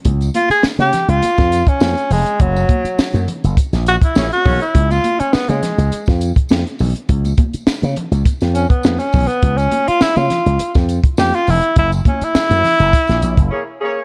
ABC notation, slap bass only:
X:1
M:4/4
L:1/16
Q:1/4=102
K:Dbmix
V:1 name="Slap bass" clef=bass
D,,2 z3 D, z D,, z F,,2 z F,, z F,,, z | G,,,2 z3 G,, z G,,, z B,,,2 z B,,, z C,, z | D,,2 z3 D, z D,, z F,,2 z F,, z C,, z | D,,2 z3 D, z D,, z F,,2 z F,, z C,, z |
D,,2 z3 D, z D,, z F,,2 z F,, z F,,, z | G,,,2 z3 G,, z G,,, z B,,, B,,, G,,, z4 |]